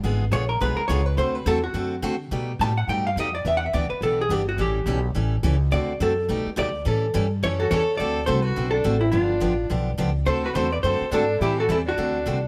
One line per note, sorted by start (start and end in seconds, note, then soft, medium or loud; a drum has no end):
0.03 0.31 G#1 medium
0.03 0.24 D3 medium
0.03 0.24 G#3 medium
0.03 0.24 B3 medium
0.03 0.24 F4 medium
0.03 0.24 G#4 medium
0.31 0.60 A#1 loud
0.31 0.43 D3 medium
0.31 0.43 G#3 medium
0.31 0.44 B3 medium
0.31 0.44 F4 medium
0.31 0.44 G#4 medium
0.31 0.49 C#5 medium
0.49 0.60 A#4 medium
0.60 0.77 B1 medium
0.60 0.80 D3 medium
0.60 0.81 G#3 medium
0.60 0.81 B3 medium
0.60 0.81 F4 medium
0.60 0.81 G#4 medium
0.60 0.76 B4 loud
0.77 0.87 A#4 medium
0.77 muted upright bass stroke soft
0.88 1.16 C#2 loud
0.88 1.00 D3 medium
0.88 1.01 G#3 medium
0.88 1.01 B3 medium
0.88 1.01 F4 medium
0.88 1.01 G#4 medium
0.88 1.06 C#5 loud
1.06 1.17 B4 loud
1.17 1.45 D2 medium
1.17 1.37 D3 soft
1.17 1.38 A3 medium
1.17 1.38 C4 medium
1.17 1.38 F#4 medium
1.17 1.38 A4 medium
1.17 1.35 C5 medium
1.35 1.46 B4 loud
1.46 1.73 E2 loud
1.46 1.57 D3 medium
1.46 1.57 A3 medium
1.46 1.58 C4 medium
1.46 1.58 F#4 medium
1.46 1.58 A4 medium
1.46 1.63 A4 medium
1.64 2.00 F#4 medium
1.74 2.02 F#2 medium
1.74 1.94 D3 medium
1.74 1.94 A3 medium
1.74 1.94 C4 medium
1.74 1.94 F#4 medium
1.74 1.95 A4 medium
2.02 2.30 D3 medium
2.02 2.14 D3 medium
2.02 2.14 A3 medium
2.02 2.14 C4 medium
2.02 2.14 F#4 medium
2.02 2.14 A4 medium
2.31 2.59 B2 medium
2.31 2.51 B2 medium
2.31 2.51 G3 medium
2.31 2.51 A3 medium
2.31 2.51 D#4 medium
2.31 2.52 G4 medium
2.59 2.87 A2 loud
2.59 2.71 B2 medium
2.59 2.72 G3 medium
2.59 2.71 A3 medium
2.59 2.72 D#4 medium
2.59 2.72 G4 medium
2.59 2.77 A5 loud
2.77 2.88 F#5 medium
2.87 3.15 G2 medium
2.87 3.08 B2 medium
2.87 3.08 G3 medium
2.87 3.08 A3 medium
2.87 3.09 D#4 medium
2.87 3.09 G4 medium
2.87 3.06 G5 loud
3.07 3.17 F5 loud
3.16 3.44 F2 medium
3.16 3.28 B2 medium
3.16 3.28 G3 medium
3.16 3.28 A3 medium
3.16 3.29 D#4 medium
3.16 3.29 G4 medium
3.20 3.34 D#5 medium
3.35 3.45 D5 medium
3.45 3.72 E2 medium
3.45 3.65 E3 medium
3.45 3.65 B3 medium
3.45 3.65 D4 medium
3.45 3.65 G4 medium
3.45 3.55 E5 medium
3.57 3.65 F#5 loud
3.66 3.74 E5 medium
3.73 3.90 D2 loud
3.73 3.84 E3 medium
3.73 3.85 B3 medium
3.73 3.85 D4 medium
3.73 3.85 G4 medium
3.73 3.89 D5 medium
3.90 4.01 B4 medium
3.90 muted upright bass stroke soft
4.01 4.28 B1 medium
4.01 4.22 E3 medium
4.01 4.22 B3 medium
4.01 4.22 D4 medium
4.01 4.22 G4 medium
4.01 4.19 A4 medium
4.21 4.32 G#4 loud
4.29 4.57 G1 medium
4.29 4.41 E3 medium
4.29 4.42 B3 medium
4.29 4.42 D4 medium
4.29 4.42 G4 medium
4.29 4.48 G4 medium
4.49 4.61 F#4 medium
4.57 4.85 A1 medium
4.57 4.78 E3 medium
4.57 4.78 G3 medium
4.57 4.78 C#4 medium
4.57 4.78 E4 medium
4.57 5.06 G4 medium
4.57 4.79 A4 medium
4.86 5.14 B1 loud
4.86 4.98 E3 medium
4.86 4.98 G3 medium
4.86 4.98 C#4 medium
4.86 4.98 E4 medium
4.86 4.99 A4 medium
5.15 5.42 A1 medium
5.15 5.35 E3 medium
5.15 5.35 G3 medium
5.15 5.35 C#4 medium
5.15 5.35 E4 medium
5.15 5.35 A4 medium
5.43 5.71 C#2 loud
5.43 5.55 E3 medium
5.43 5.55 G3 medium
5.43 5.55 C#4 medium
5.43 5.55 E4 medium
5.43 5.55 A4 medium
5.71 6.00 D2 medium
5.71 5.91 D3 medium
5.71 5.92 A3 medium
5.71 5.92 C4 medium
5.71 5.92 F#4 medium
5.71 5.92 A4 medium
5.71 5.98 D5 medium
6.00 6.28 F#2 medium
6.00 6.11 D3 medium
6.00 6.12 A3 medium
6.00 6.12 C4 medium
6.00 6.12 F#4 medium
6.00 6.12 A4 medium
6.00 6.44 A4 medium
6.29 6.45 B1 medium
6.29 6.48 B2 medium
6.29 6.49 G3 medium
6.29 6.49 A3 medium
6.29 6.49 D#4 medium
6.29 6.49 G4 medium
6.46 muted upright bass stroke soft
6.56 6.85 D2 loud
6.56 6.68 B2 medium
6.56 6.68 G3 medium
6.56 6.68 A3 medium
6.56 6.68 D#4 medium
6.56 6.69 G4 medium
6.56 6.85 D5 loud
6.85 7.13 A2 medium
6.85 7.05 E3 medium
6.85 7.05 G3 medium
6.85 7.05 C#4 medium
6.85 7.06 E4 medium
6.85 7.06 A4 medium
6.85 7.30 A4 medium
7.14 7.42 G2 loud
7.14 7.25 E3 medium
7.14 7.25 G3 medium
7.14 7.25 C#4 medium
7.14 7.25 E4 medium
7.14 7.26 A4 medium
7.43 7.70 F#2 medium
7.43 7.62 E3 medium
7.43 7.62 G3 medium
7.43 7.63 C#4 medium
7.43 7.63 E4 medium
7.43 7.63 A4 medium
7.43 7.70 C#5 loud
7.60 7.70 F#4 medium
7.60 7.71 A4 loud
7.71 7.98 E2 loud
7.71 7.82 E3 medium
7.71 7.82 G3 medium
7.71 7.82 C#4 medium
7.71 7.83 E4 medium
7.71 7.83 A4 medium
7.71 7.96 A4 medium
7.71 7.94 A4 loud
7.71 7.97 C#5 loud
7.97 8.27 D2 medium
7.97 8.19 D3 medium
7.97 8.19 A3 medium
7.97 8.20 C4 medium
7.97 8.20 F#4 medium
7.97 8.25 A4 medium
7.97 8.20 A4 medium
7.97 8.26 D5 loud
8.26 8.55 C2 loud
8.26 8.38 D3 medium
8.26 8.39 A3 medium
8.26 8.39 C4 medium
8.26 8.39 F#4 medium
8.26 8.44 A4 medium
8.26 8.39 A4 medium
8.26 8.42 C5 loud
8.42 8.72 F#4 medium
8.42 8.73 B4 medium
8.56 8.84 B1 medium
8.56 8.76 D3 medium
8.56 8.76 A3 medium
8.56 8.76 C4 medium
8.56 8.77 F#4 medium
8.56 8.77 A4 medium
8.71 9.00 D4 medium
8.71 9.02 A4 loud
8.84 9.12 A1 loud
8.84 8.95 D3 medium
8.84 8.96 A3 medium
8.84 8.96 C4 medium
8.84 8.96 F#4 medium
8.84 8.96 A4 medium
9.00 9.11 C4 medium
9.00 9.11 E4 medium
9.12 9.41 G1 medium
9.12 9.32 D3 soft
9.12 9.32 F3 medium
9.12 9.32 B3 medium
9.12 9.66 D4 medium
9.12 9.33 D4 medium
9.12 9.65 F4 medium
9.12 9.33 G4 medium
9.40 9.69 A1 medium
9.40 9.52 D3 medium
9.40 9.52 F3 medium
9.40 9.52 B3 medium
9.40 9.53 D4 medium
9.40 9.53 G4 medium
9.70 9.97 B1 medium
9.70 9.90 D3 medium
9.70 9.90 F3 medium
9.70 9.90 B3 medium
9.70 9.90 D4 medium
9.70 9.90 G4 medium
9.98 10.26 C#2 medium
9.98 10.09 D3 medium
9.98 10.09 F3 medium
9.98 10.10 B3 medium
9.98 10.10 D4 medium
9.98 10.10 G4 medium
10.26 10.54 D2 medium
10.26 10.46 D3 medium
10.26 10.46 A3 medium
10.26 10.46 C4 medium
10.26 10.47 F#4 medium
10.26 10.43 A4 medium
10.26 10.47 A4 medium
10.26 10.45 C5 medium
10.44 10.55 F#4 medium
10.44 10.55 B4 medium
10.55 10.83 E2 loud
10.55 10.66 D3 medium
10.55 10.66 A3 medium
10.55 10.67 C4 medium
10.55 10.67 F#4 medium
10.55 10.71 A4 medium
10.55 10.67 A4 medium
10.55 10.72 C5 loud
10.72 10.77 B4 medium
10.72 10.77 D5 medium
10.83 11.00 F#2 medium
10.83 11.04 D3 medium
10.83 11.04 A3 medium
10.83 11.04 C4 medium
10.83 11.04 F#4 medium
10.83 11.10 A4 medium
10.83 11.04 A4 medium
10.83 11.13 C5 loud
11.01 muted upright bass stroke soft
11.11 11.39 G#2 medium
11.11 11.23 D3 medium
11.11 11.23 A3 medium
11.11 11.23 C4 medium
11.11 11.39 D4 medium
11.11 11.24 F#4 medium
11.11 11.24 A4 medium
11.11 11.41 A4 loud
11.40 11.68 A2 medium
11.40 11.61 E3 medium
11.40 11.61 G3 medium
11.40 11.61 C4 medium
11.40 11.57 E4 medium
11.40 11.61 E4 medium
11.40 11.58 G4 medium
11.40 11.61 A4 medium
11.59 11.69 F#4 medium
11.59 11.70 A4 loud
11.69 11.96 E2 loud
11.69 11.80 E3 medium
11.69 11.80 G3 medium
11.69 11.81 C4 medium
11.69 11.81 E4 medium
11.69 11.78 E4 medium
11.69 11.81 A4 medium
11.69 11.77 A4 medium
11.86 12.39 D4 medium
11.86 12.40 F#4 medium
11.98 12.25 D2 medium
11.98 12.17 D3 medium
11.98 12.17 A3 medium
11.98 12.18 C4 medium
11.98 12.18 F#4 medium
11.98 12.18 A4 medium
12.26 12.48 C2 medium
12.26 12.37 D3 medium
12.26 12.37 A3 medium
12.26 12.37 C4 medium
12.26 12.37 F#4 medium
12.26 12.38 A4 medium